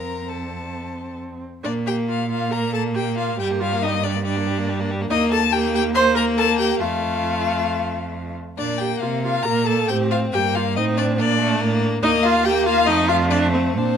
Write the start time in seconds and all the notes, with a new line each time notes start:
Already playing: F2 C4 A#4 A#5
0.28 C4 A4 A5
1.64 A#2 A#3 D4 D5
1.76 A#3
1.86 A#3 G4 G5
1.97 A#3
2.08 A#3 F4 F5
2.19 A#3
2.29 A#3 F4 F5
2.41 A#3
2.51 A#3 A#4 A#5
2.63 A#3
2.73 A#3 A4 A5
2.85 A#3
2.94 A#3 G4 G5
3.07 A#3
3.16 A#3 F4 F5
3.29 A#3
3.39 G2 G3 G4 G5
3.51 A#3
3.60 G3 F4 F5
3.72 A#3
3.82 G3 D#4 D#5
3.94 A#3
4.03 G3 D4 D5
4.15 A#3
4.24 G3 D4 D5
4.36 A#3
4.47 G3
4.58 A#3
4.69 G3
4.80 A#3
4.91 G3
5.01 A#3
5.10 D#2 A#3 D#4 D#5
5.31 A4 A5
5.52 A#3 G4 G5
5.74 G4 G5
5.94 A#3 C5 C6
6.15 A#4 A#5
6.37 A4 A5
6.58 G4 G5
6.80 F2 A3 F4 F5
8.57 A#2 A#3 D4 D5
8.79 G4 G5
9.00 C3 F4 F5
9.22 F4 F5
9.43 A#2 A#3 A#4 A#5
9.66 A4 A5
9.88 A2 C4 G4 G5
10.11 F4 F5
10.32 G2 A#3 G4 G5
10.55 F4 F5
10.76 A2 C4 D#4 D#5
10.97 D4 D5
11.18 A#2 A#3 D4 D5
11.40 A3
11.60 A2 A#3
12.02 D#2 A#3 D#4 D#5
12.23 F4 F5
12.45 A#3 G4 G5
12.66 F4 F5
12.86 F2 A3 D#4 D#5
13.08 F4 F5
13.31 D4 D5
13.53 C4 C5
13.75 A#2 C4 D4 C5